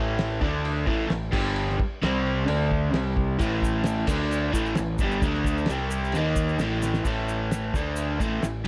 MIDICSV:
0, 0, Header, 1, 6, 480
1, 0, Start_track
1, 0, Tempo, 457317
1, 1648, Time_signature, 4, 2, 24, 8
1, 9108, End_track
2, 0, Start_track
2, 0, Title_t, "Overdriven electric guitar"
2, 0, Program_c, 0, 29
2, 0, Note_on_c, 0, 45, 91
2, 0, Note_on_c, 0, 52, 103
2, 0, Note_on_c, 0, 57, 104
2, 423, Note_off_c, 0, 45, 0
2, 427, Note_on_c, 0, 50, 101
2, 429, Note_off_c, 0, 57, 0
2, 437, Note_off_c, 0, 52, 0
2, 441, Note_on_c, 0, 57, 97
2, 451, Note_on_c, 0, 62, 98
2, 902, Note_off_c, 0, 50, 0
2, 906, Note_on_c, 0, 45, 98
2, 911, Note_off_c, 0, 57, 0
2, 915, Note_on_c, 0, 52, 103
2, 923, Note_off_c, 0, 62, 0
2, 928, Note_on_c, 0, 57, 102
2, 1118, Note_off_c, 0, 45, 0
2, 1130, Note_off_c, 0, 52, 0
2, 1131, Note_on_c, 0, 45, 62
2, 1142, Note_on_c, 0, 52, 74
2, 1161, Note_off_c, 0, 57, 0
2, 1342, Note_off_c, 0, 45, 0
2, 1347, Note_off_c, 0, 52, 0
2, 1382, Note_on_c, 0, 43, 93
2, 1388, Note_on_c, 0, 50, 101
2, 1390, Note_on_c, 0, 55, 109
2, 1866, Note_off_c, 0, 43, 0
2, 1869, Note_off_c, 0, 50, 0
2, 1870, Note_off_c, 0, 55, 0
2, 2120, Note_on_c, 0, 48, 96
2, 2132, Note_on_c, 0, 55, 98
2, 2141, Note_on_c, 0, 60, 115
2, 2582, Note_off_c, 0, 48, 0
2, 2582, Note_on_c, 0, 50, 86
2, 2593, Note_off_c, 0, 60, 0
2, 2593, Note_on_c, 0, 62, 107
2, 2602, Note_off_c, 0, 55, 0
2, 2602, Note_on_c, 0, 57, 101
2, 3057, Note_off_c, 0, 50, 0
2, 3057, Note_on_c, 0, 48, 91
2, 3071, Note_off_c, 0, 57, 0
2, 3071, Note_on_c, 0, 55, 114
2, 3077, Note_off_c, 0, 62, 0
2, 3077, Note_on_c, 0, 60, 110
2, 3541, Note_off_c, 0, 48, 0
2, 3548, Note_off_c, 0, 55, 0
2, 3551, Note_off_c, 0, 60, 0
2, 3554, Note_on_c, 0, 45, 102
2, 3558, Note_on_c, 0, 52, 102
2, 3577, Note_on_c, 0, 57, 110
2, 4269, Note_off_c, 0, 45, 0
2, 4271, Note_off_c, 0, 52, 0
2, 4272, Note_off_c, 0, 57, 0
2, 4282, Note_on_c, 0, 50, 90
2, 4285, Note_on_c, 0, 57, 102
2, 4293, Note_on_c, 0, 62, 99
2, 4745, Note_off_c, 0, 57, 0
2, 4749, Note_on_c, 0, 52, 110
2, 4752, Note_off_c, 0, 50, 0
2, 4756, Note_on_c, 0, 45, 91
2, 4758, Note_off_c, 0, 62, 0
2, 4766, Note_on_c, 0, 57, 112
2, 4987, Note_off_c, 0, 52, 0
2, 4990, Note_off_c, 0, 45, 0
2, 4995, Note_off_c, 0, 57, 0
2, 5007, Note_on_c, 0, 45, 73
2, 5010, Note_on_c, 0, 52, 81
2, 5195, Note_off_c, 0, 45, 0
2, 5196, Note_off_c, 0, 52, 0
2, 5252, Note_on_c, 0, 43, 91
2, 5258, Note_on_c, 0, 50, 100
2, 5275, Note_on_c, 0, 55, 103
2, 5477, Note_off_c, 0, 50, 0
2, 5478, Note_off_c, 0, 43, 0
2, 5488, Note_off_c, 0, 55, 0
2, 5490, Note_on_c, 0, 50, 92
2, 5492, Note_on_c, 0, 57, 92
2, 5512, Note_on_c, 0, 62, 101
2, 5958, Note_off_c, 0, 50, 0
2, 5959, Note_off_c, 0, 57, 0
2, 5969, Note_off_c, 0, 62, 0
2, 5977, Note_on_c, 0, 48, 93
2, 5985, Note_on_c, 0, 55, 96
2, 5989, Note_on_c, 0, 60, 109
2, 6443, Note_off_c, 0, 48, 0
2, 6447, Note_off_c, 0, 55, 0
2, 6448, Note_off_c, 0, 60, 0
2, 6453, Note_on_c, 0, 51, 88
2, 6473, Note_on_c, 0, 58, 101
2, 6481, Note_on_c, 0, 63, 97
2, 6921, Note_off_c, 0, 51, 0
2, 6925, Note_on_c, 0, 45, 95
2, 6932, Note_off_c, 0, 58, 0
2, 6935, Note_off_c, 0, 63, 0
2, 6938, Note_on_c, 0, 52, 103
2, 6942, Note_on_c, 0, 57, 97
2, 7383, Note_off_c, 0, 45, 0
2, 7396, Note_on_c, 0, 45, 88
2, 7399, Note_off_c, 0, 52, 0
2, 7402, Note_off_c, 0, 57, 0
2, 7412, Note_on_c, 0, 52, 91
2, 7415, Note_on_c, 0, 57, 92
2, 8118, Note_off_c, 0, 45, 0
2, 8125, Note_off_c, 0, 52, 0
2, 8127, Note_off_c, 0, 57, 0
2, 8139, Note_on_c, 0, 50, 85
2, 8145, Note_on_c, 0, 57, 100
2, 8149, Note_on_c, 0, 62, 100
2, 8601, Note_off_c, 0, 50, 0
2, 8606, Note_on_c, 0, 45, 89
2, 8610, Note_off_c, 0, 57, 0
2, 8614, Note_on_c, 0, 52, 101
2, 8615, Note_off_c, 0, 62, 0
2, 8625, Note_on_c, 0, 57, 97
2, 8819, Note_off_c, 0, 45, 0
2, 8832, Note_on_c, 0, 45, 64
2, 8838, Note_off_c, 0, 52, 0
2, 8851, Note_on_c, 0, 52, 67
2, 8853, Note_off_c, 0, 57, 0
2, 9036, Note_off_c, 0, 45, 0
2, 9046, Note_off_c, 0, 52, 0
2, 9071, Note_on_c, 0, 43, 97
2, 9075, Note_on_c, 0, 50, 88
2, 9108, Note_off_c, 0, 43, 0
2, 9108, Note_off_c, 0, 50, 0
2, 9108, End_track
3, 0, Start_track
3, 0, Title_t, "Fingered electric bass"
3, 0, Program_c, 1, 33
3, 0, Note_on_c, 1, 33, 90
3, 407, Note_off_c, 1, 33, 0
3, 439, Note_on_c, 1, 38, 91
3, 891, Note_off_c, 1, 38, 0
3, 914, Note_on_c, 1, 33, 100
3, 1144, Note_off_c, 1, 33, 0
3, 1156, Note_on_c, 1, 33, 82
3, 1385, Note_off_c, 1, 33, 0
3, 1403, Note_on_c, 1, 31, 90
3, 1850, Note_off_c, 1, 31, 0
3, 2135, Note_on_c, 1, 36, 100
3, 2575, Note_off_c, 1, 36, 0
3, 2612, Note_on_c, 1, 38, 103
3, 3053, Note_off_c, 1, 38, 0
3, 3086, Note_on_c, 1, 36, 101
3, 3529, Note_off_c, 1, 36, 0
3, 3570, Note_on_c, 1, 33, 94
3, 4242, Note_off_c, 1, 33, 0
3, 4280, Note_on_c, 1, 38, 100
3, 4726, Note_off_c, 1, 38, 0
3, 4765, Note_on_c, 1, 33, 112
3, 4985, Note_off_c, 1, 33, 0
3, 5026, Note_on_c, 1, 33, 87
3, 5236, Note_off_c, 1, 33, 0
3, 5247, Note_on_c, 1, 31, 92
3, 5466, Note_off_c, 1, 31, 0
3, 5478, Note_on_c, 1, 38, 101
3, 5926, Note_off_c, 1, 38, 0
3, 5971, Note_on_c, 1, 36, 104
3, 6414, Note_off_c, 1, 36, 0
3, 6436, Note_on_c, 1, 39, 96
3, 6886, Note_off_c, 1, 39, 0
3, 6908, Note_on_c, 1, 33, 96
3, 7364, Note_off_c, 1, 33, 0
3, 7400, Note_on_c, 1, 33, 81
3, 8085, Note_off_c, 1, 33, 0
3, 8123, Note_on_c, 1, 38, 91
3, 8575, Note_off_c, 1, 38, 0
3, 8605, Note_on_c, 1, 33, 100
3, 8833, Note_off_c, 1, 33, 0
3, 8852, Note_on_c, 1, 33, 81
3, 9078, Note_off_c, 1, 33, 0
3, 9108, End_track
4, 0, Start_track
4, 0, Title_t, "Muted fingered electric bass strokes"
4, 1882, Note_on_c, 9, 29, 44
4, 1987, Note_off_c, 9, 29, 0
4, 9108, End_track
5, 0, Start_track
5, 0, Title_t, "Muted overdriven electric guitar strokes"
5, 1877, Note_on_c, 9, 29, 63
5, 1982, Note_off_c, 9, 29, 0
5, 9108, End_track
6, 0, Start_track
6, 0, Title_t, "Drums"
6, 194, Note_on_c, 9, 49, 65
6, 200, Note_on_c, 9, 38, 126
6, 299, Note_off_c, 9, 49, 0
6, 305, Note_off_c, 9, 38, 0
6, 437, Note_on_c, 9, 36, 105
6, 542, Note_off_c, 9, 36, 0
6, 680, Note_on_c, 9, 49, 58
6, 785, Note_off_c, 9, 49, 0
6, 915, Note_on_c, 9, 36, 86
6, 1020, Note_off_c, 9, 36, 0
6, 1153, Note_on_c, 9, 49, 59
6, 1158, Note_on_c, 9, 38, 118
6, 1258, Note_off_c, 9, 49, 0
6, 1263, Note_off_c, 9, 38, 0
6, 1396, Note_on_c, 9, 49, 110
6, 1397, Note_on_c, 9, 36, 111
6, 1501, Note_off_c, 9, 49, 0
6, 1502, Note_off_c, 9, 36, 0
6, 1637, Note_on_c, 9, 49, 61
6, 1742, Note_off_c, 9, 49, 0
6, 1776, Note_on_c, 9, 38, 34
6, 1881, Note_off_c, 9, 38, 0
6, 1885, Note_on_c, 9, 36, 92
6, 1990, Note_off_c, 9, 36, 0
6, 2130, Note_on_c, 9, 49, 67
6, 2135, Note_on_c, 9, 38, 117
6, 2235, Note_off_c, 9, 49, 0
6, 2240, Note_off_c, 9, 38, 0
6, 2602, Note_on_c, 9, 49, 70
6, 2707, Note_off_c, 9, 49, 0
6, 2849, Note_on_c, 9, 36, 88
6, 2954, Note_off_c, 9, 36, 0
6, 3083, Note_on_c, 9, 49, 70
6, 3088, Note_on_c, 9, 38, 117
6, 3188, Note_off_c, 9, 49, 0
6, 3193, Note_off_c, 9, 38, 0
6, 3325, Note_on_c, 9, 36, 90
6, 3430, Note_off_c, 9, 36, 0
6, 3562, Note_on_c, 9, 49, 65
6, 3567, Note_on_c, 9, 36, 121
6, 3575, Note_on_c, 9, 82, 72
6, 3666, Note_off_c, 9, 49, 0
6, 3672, Note_off_c, 9, 36, 0
6, 3680, Note_off_c, 9, 82, 0
6, 3803, Note_on_c, 9, 36, 90
6, 3825, Note_on_c, 9, 82, 90
6, 3908, Note_off_c, 9, 36, 0
6, 3930, Note_off_c, 9, 82, 0
6, 4027, Note_on_c, 9, 49, 70
6, 4032, Note_on_c, 9, 38, 115
6, 4055, Note_on_c, 9, 82, 78
6, 4132, Note_off_c, 9, 49, 0
6, 4137, Note_off_c, 9, 38, 0
6, 4160, Note_off_c, 9, 82, 0
6, 4273, Note_on_c, 9, 49, 99
6, 4280, Note_on_c, 9, 36, 100
6, 4288, Note_on_c, 9, 82, 91
6, 4378, Note_off_c, 9, 49, 0
6, 4385, Note_off_c, 9, 36, 0
6, 4393, Note_off_c, 9, 82, 0
6, 4526, Note_on_c, 9, 49, 63
6, 4536, Note_on_c, 9, 82, 79
6, 4631, Note_off_c, 9, 49, 0
6, 4641, Note_off_c, 9, 82, 0
6, 4762, Note_on_c, 9, 36, 92
6, 4772, Note_on_c, 9, 82, 112
6, 4867, Note_off_c, 9, 36, 0
6, 4877, Note_off_c, 9, 82, 0
6, 4892, Note_on_c, 9, 82, 28
6, 4987, Note_on_c, 9, 49, 61
6, 4993, Note_on_c, 9, 38, 117
6, 4997, Note_off_c, 9, 82, 0
6, 5006, Note_on_c, 9, 82, 81
6, 5092, Note_off_c, 9, 49, 0
6, 5097, Note_off_c, 9, 38, 0
6, 5111, Note_off_c, 9, 82, 0
6, 5232, Note_on_c, 9, 82, 100
6, 5238, Note_on_c, 9, 36, 100
6, 5337, Note_off_c, 9, 82, 0
6, 5343, Note_off_c, 9, 36, 0
6, 5370, Note_on_c, 9, 82, 28
6, 5475, Note_off_c, 9, 82, 0
6, 5479, Note_on_c, 9, 36, 114
6, 5480, Note_on_c, 9, 49, 58
6, 5482, Note_on_c, 9, 82, 80
6, 5584, Note_off_c, 9, 36, 0
6, 5585, Note_off_c, 9, 49, 0
6, 5587, Note_off_c, 9, 82, 0
6, 5606, Note_on_c, 9, 38, 35
6, 5711, Note_off_c, 9, 38, 0
6, 5714, Note_on_c, 9, 36, 92
6, 5737, Note_on_c, 9, 82, 93
6, 5819, Note_off_c, 9, 36, 0
6, 5842, Note_off_c, 9, 82, 0
6, 5853, Note_on_c, 9, 82, 30
6, 5938, Note_on_c, 9, 49, 68
6, 5943, Note_on_c, 9, 38, 113
6, 5958, Note_off_c, 9, 82, 0
6, 5979, Note_on_c, 9, 82, 79
6, 6043, Note_off_c, 9, 49, 0
6, 6048, Note_off_c, 9, 38, 0
6, 6084, Note_off_c, 9, 82, 0
6, 6201, Note_on_c, 9, 82, 96
6, 6306, Note_off_c, 9, 82, 0
6, 6342, Note_on_c, 9, 82, 30
6, 6424, Note_on_c, 9, 49, 63
6, 6447, Note_off_c, 9, 82, 0
6, 6452, Note_on_c, 9, 82, 75
6, 6529, Note_off_c, 9, 49, 0
6, 6557, Note_off_c, 9, 82, 0
6, 6675, Note_on_c, 9, 36, 90
6, 6677, Note_on_c, 9, 82, 105
6, 6780, Note_off_c, 9, 36, 0
6, 6782, Note_off_c, 9, 82, 0
6, 6812, Note_on_c, 9, 82, 27
6, 6917, Note_off_c, 9, 82, 0
6, 6918, Note_on_c, 9, 82, 80
6, 6921, Note_on_c, 9, 49, 64
6, 6926, Note_on_c, 9, 38, 120
6, 7023, Note_off_c, 9, 82, 0
6, 7026, Note_off_c, 9, 49, 0
6, 7031, Note_off_c, 9, 38, 0
6, 7163, Note_on_c, 9, 82, 96
6, 7173, Note_on_c, 9, 38, 73
6, 7268, Note_off_c, 9, 82, 0
6, 7278, Note_off_c, 9, 38, 0
6, 7284, Note_on_c, 9, 38, 90
6, 7290, Note_on_c, 9, 82, 29
6, 7389, Note_off_c, 9, 38, 0
6, 7395, Note_off_c, 9, 82, 0
6, 7400, Note_on_c, 9, 36, 100
6, 7401, Note_on_c, 9, 82, 111
6, 7408, Note_on_c, 9, 49, 61
6, 7505, Note_off_c, 9, 36, 0
6, 7506, Note_off_c, 9, 82, 0
6, 7513, Note_off_c, 9, 49, 0
6, 7647, Note_on_c, 9, 82, 80
6, 7752, Note_off_c, 9, 82, 0
6, 7885, Note_on_c, 9, 49, 60
6, 7890, Note_on_c, 9, 38, 118
6, 7896, Note_on_c, 9, 82, 104
6, 7990, Note_off_c, 9, 49, 0
6, 7995, Note_off_c, 9, 38, 0
6, 8001, Note_off_c, 9, 82, 0
6, 8124, Note_on_c, 9, 36, 100
6, 8134, Note_on_c, 9, 82, 72
6, 8229, Note_off_c, 9, 36, 0
6, 8239, Note_off_c, 9, 82, 0
6, 8355, Note_on_c, 9, 82, 97
6, 8362, Note_on_c, 9, 49, 55
6, 8460, Note_off_c, 9, 82, 0
6, 8467, Note_off_c, 9, 49, 0
6, 8607, Note_on_c, 9, 36, 98
6, 8616, Note_on_c, 9, 82, 83
6, 8712, Note_off_c, 9, 36, 0
6, 8721, Note_off_c, 9, 82, 0
6, 8842, Note_on_c, 9, 49, 58
6, 8847, Note_on_c, 9, 38, 107
6, 8857, Note_on_c, 9, 82, 99
6, 8947, Note_off_c, 9, 49, 0
6, 8952, Note_off_c, 9, 38, 0
6, 8962, Note_off_c, 9, 82, 0
6, 9108, End_track
0, 0, End_of_file